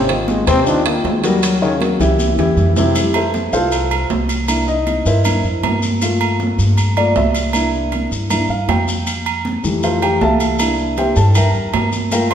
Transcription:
Already playing: upright bass G#1
0.09 upright piano D#3 D#4 F4, trombone D#3, high conga, high timbale, maracas
0.28 trombone G#3, high conga, low timbale, maracas
0.47 upright bass D#2, upright piano C3 C4 C5, trombone C4, high conga, high timbale, maracas
0.66 upright piano D#3 D#4 F4, trombone D4, high conga, maracas
0.85 upright piano D#3 D#4 F4, trombone A#3, high timbale, maracas
1.04 upright bass D#2, trombone G#3, high conga, low timbale, maracas
1.23 upright piano F#3 F#4 A#4, trombone G3, high conga, high timbale, maracas
1.42 trombone F#3, high conga, high timbale, maracas
1.62 upright piano C#3 C#4 C#5, trombone D#3, high conga, maracas
1.81 upright piano F#3 F#4 A#4, high conga, high timbale, low timbale, maracas
2.00 upright bass C2, upright piano E3 E4 G4, high timbale, maracas
2.19 high conga, maracas
2.38 upright bass E2, upright piano E3 E4 G4, high timbale, maracas
2.56 upright bass F2, low conga, maracas
2.77 upright piano C3 C4 E4, low conga, low timbale, maracas
2.95 upright piano G3 A3 E4, high conga, low agogo, maracas
3.14 upright piano E4 A4 C5 E5, high conga, low agogo, maracas
3.34 high conga, low timbale, maracas
3.52 upright bass C2, upright piano F4 A4 C5 F5, high conga, maracas
3.72 high conga, low agogo, maracas
3.91 high conga, low agogo, maracas
4.10 upright bass C2, high conga, low timbale, maracas
4.29 high conga, low agogo, maracas
4.48 upright piano A#3 D4 E4, high conga, low agogo, maracas
4.68 upright piano D#4 D#5, high conga, maracas
4.87 high conga, low timbale, low agogo, maracas
5.06 upright bass G2, upright piano E4 A#4 C5 E5, high conga, maracas
5.25 upright piano A#3 D4 E4, high conga, low conga, low agogo, maracas
5.44 upright bass F2, high conga, maracas
5.63 upright bass G2, high conga, low timbale, low agogo, maracas
5.82 high conga, maracas
6.01 upright piano A3 A#3 F4, high conga, low agogo, maracas
6.21 low agogo, maracas
6.40 high conga, low timbale, maracas
6.58 upright bass G2, high conga, maracas
6.78 high conga, low agogo, maracas
6.97 upright piano A3 A#3 F4 D5, low agogo, maracas
7.16 upright bass C2, upright piano E5, high conga, low timbale, maracas
7.34 high conga, low agogo, maracas
7.53 upright piano A#3 D4 E4, high conga, low agogo, maracas
7.73 high conga, maracas
7.92 high conga, low timbale, low agogo, maracas
8.11 upright bass G2, high conga, maracas
8.30 upright piano A#3 D4 E4, high conga, low conga, low agogo, maracas
8.49 upright bass G2, upright piano F5, high conga, maracas
8.68 upright bass F2, upright piano G5, high conga, low timbale, low agogo, maracas
8.88 high conga, maracas
9.07 high conga, low agogo, maracas
9.26 high conga, low agogo, maracas
9.45 high conga, low timbale, maracas
9.63 upright bass F2, upright piano E3 G3 A3, high conga, maracas
9.83 upright piano F4 A4 C5 F5, high conga, low agogo, maracas
10.02 upright piano G4 G5, high conga, low agogo, maracas
10.21 upright bass C2, upright piano A4 E5 F5 A5, high conga, low timbale, maracas
10.40 high conga, low agogo, maracas
10.59 upright piano A#3 D4 E4, high conga, low agogo, maracas
10.78 high conga, maracas
10.97 upright piano G4 C5 E5 G5, high conga, low timbale, low agogo, maracas
11.16 upright bass G2, upright piano A4 A5, high conga, maracas
11.35 upright piano A#4 E5 G5 A#5, high conga, low conga, low agogo, maracas
11.54 upright bass F2, high conga, maracas
11.74 upright bass G2, high conga, low timbale, low agogo, maracas
11.92 high conga, maracas
12.11 upright piano A3 A#3 F4 A#4 F5 G5 A#5, high conga, low agogo, maracas
12.31 upright piano C6, low agogo

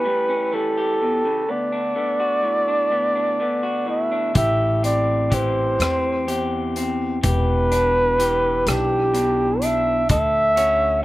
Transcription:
Already playing: clean electric guitar E3 C#4 G4, flugelhorn B4
0.04 clean electric guitar A2 G3
0.29 clean electric guitar C#4
0.52 clean electric guitar E3 G3, flugelhorn A4
0.78 clean electric guitar G4
1.02 clean electric guitar B2
1.25 clean electric guitar C#3
1.49 clean electric guitar D2 B3, flugelhorn D5
1.72 clean electric guitar D4
1.95 clean electric guitar D3 B3
2.20 clean electric guitar F#4
2.43 clean electric guitar A2
2.68 clean electric guitar D4
2.91 clean electric guitar D2 B3
3.15 clean electric guitar D4
3.40 clean electric guitar D3 B3
3.63 clean electric guitar F#4
3.86 clean electric guitar A2, flugelhorn E5
4.12 clean electric guitar D4
4.34 upright bass A1, clean electric guitar A2 G4, flugelhorn E5, kick, closed hi-hat
4.83 clean electric guitar C4, flugelhorn D5, closed hi-hat
5.30 clean electric guitar E3 G4, flugelhorn C5, kick, closed hi-hat
5.79 upright bass E2, clean electric guitar C4, cross-stick, closed hi-hat
6.27 clean electric guitar E2 G4, closed hi-hat
6.76 clean electric guitar C4, closed hi-hat
7.23 upright bass E1, clean electric guitar E2 G4, flugelhorn B4, kick, closed hi-hat
7.72 clean electric guitar D4, closed hi-hat
8.19 clean electric guitar E3 G4, closed hi-hat
8.66 upright bass B1, clean electric guitar D4, flugelhorn G4, cross-stick, closed hi-hat
9.14 clean electric guitar B2 D4, closed hi-hat
9.62 clean electric guitar D4, flugelhorn E5, closed hi-hat
10.09 upright bass D2, clean electric guitar D2 A4, flugelhorn E5, kick, closed hi-hat
10.56 steel-string acoustic guitar C#4, clean electric guitar F#4, closed hi-hat

